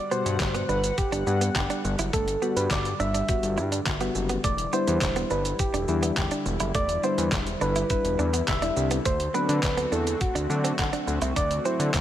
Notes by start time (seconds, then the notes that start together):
Already playing: D3 G3 F#5
0.11 B2 G3 B3 F#4 C5, shaker
0.26 G2, muted clean electric guitar stroke, closed hi-hat, shaker
0.40 G2, muted clean electric guitar stroke, kick, snare, clap, closed hi-hat, shaker
0.54 B3, closed hi-hat, shaker
0.69 G1 D4 B4, shaker
0.84 closed hi-hat, shaker
0.98 G4, kick, closed hi-hat, shaker
1.12 G1 D4, closed hi-hat, shaker
1.27 G2 G3 B3 F#5, muted clean electric guitar stroke, shaker
1.41 B3, closed hi-hat, shaker
1.55 G2 G4, kick, snare, clap, closed hi-hat, shaker
1.70 D4, closed hi-hat, shaker
1.85 G1, muted clean electric guitar stroke, shaker
1.99 F#1 E4, closed hi-hat, shaker
2.13 G1 A3 A4, kick, closed hi-hat, shaker
2.28 muted clean electric guitar stroke, closed hi-hat, shaker
2.42 G3 B3 F#4, shaker
2.56 G2 B4, closed hi-hat, shaker
2.70 G2 D5, muted clean electric guitar stroke, kick, snare, clap, closed hi-hat, shaker
2.85 closed hi-hat, shaker
3.00 G1 D4 E5, shaker
3.14 D4, closed hi-hat, shaker
3.28 G3 B3 F#4, muted clean electric guitar stroke, kick, closed hi-hat, shaker
3.43 G1, closed hi-hat, shaker
3.58 G2 E4, shaker
3.72 D4, closed hi-hat, shaker
3.86 G1 B3 F#4, kick, snare, clap, closed hi-hat, shaker
4.00 G3 B3 F#4, closed hi-hat, shaker
4.15 F#1, muted clean electric guitar stroke, shaker
4.29 B3, closed hi-hat, shaker
4.44 E1 G3 A3 E4 D5, kick, closed hi-hat, shaker
4.58 closed hi-hat, shaker
4.73 G3 B3 D4 E4 C5, shaker
4.87 E2, muted clean electric guitar stroke, closed hi-hat, shaker
5.01 E1, muted clean electric guitar stroke, kick, snare, clap, closed hi-hat, shaker
5.16 B3, closed hi-hat, shaker
5.30 G1 D4 B4, shaker
5.45 closed hi-hat, shaker
5.59 G4, kick, closed hi-hat, shaker
5.74 E1 D4, closed hi-hat, shaker
5.88 E2 G3 D4 E4, muted clean electric guitar stroke, shaker
6.03 B3, closed hi-hat, shaker
6.17 E2 G4, kick, snare, clap, closed hi-hat, shaker
6.31 D4, closed hi-hat, shaker
6.46 E1, muted clean electric guitar stroke, shaker
6.60 F#1 E4, closed hi-hat, shaker
6.75 E1 A3 D5, kick, closed hi-hat, shaker
6.89 muted clean electric guitar stroke, closed hi-hat, shaker
7.03 G3 B3 D4 E4 C5, shaker
7.18 E2, closed hi-hat, shaker
7.32 E1, muted clean electric guitar stroke, kick, snare, clap, closed hi-hat, shaker
7.47 closed hi-hat, shaker
7.61 G1 D4 B4, shaker
7.76 E4, closed hi-hat, shaker
7.90 G3 D4 E4 B4, muted clean electric guitar stroke, kick, closed hi-hat, shaker
8.04 E1, closed hi-hat, shaker
8.19 E2 D4, shaker
8.33 B3, closed hi-hat, shaker
8.47 E1 D4 G4 E5, kick, snare, clap, closed hi-hat, shaker
8.62 G3 D4 E4, closed hi-hat, shaker
8.77 C2, muted clean electric guitar stroke, shaker
8.91 B3, closed hi-hat, shaker
9.05 D2 A3 C4 F#4 C5, kick, closed hi-hat, shaker
9.20 closed hi-hat, shaker
9.34 F#3 B3 C4 D4 B4, shaker
9.49 D3, muted clean electric guitar stroke, closed hi-hat, shaker
9.63 D2, muted clean electric guitar stroke, kick, snare, clap, closed hi-hat, shaker
9.77 B3, closed hi-hat, shaker
9.92 E2 D4 A4, shaker
10.07 closed hi-hat, shaker
10.21 F#4, kick, closed hi-hat, shaker
10.35 D2 D4, closed hi-hat, shaker
10.50 D3 F#3 C4 D4, muted clean electric guitar stroke, shaker
10.64 C4, closed hi-hat, shaker
10.78 D3 F#4, kick, snare, clap, closed hi-hat, shaker
10.93 D4, closed hi-hat, shaker
11.07 D2, muted clean electric guitar stroke, shaker
11.22 C2 E4, closed hi-hat, shaker
11.36 D2 D4 D5, kick, closed hi-hat, shaker
11.51 muted clean electric guitar stroke, closed hi-hat, shaker
11.65 F#3 C4 E4 C5, shaker
11.79 D3, closed hi-hat, shaker
11.94 D2, muted clean electric guitar stroke, kick, snare, clap, closed hi-hat, shaker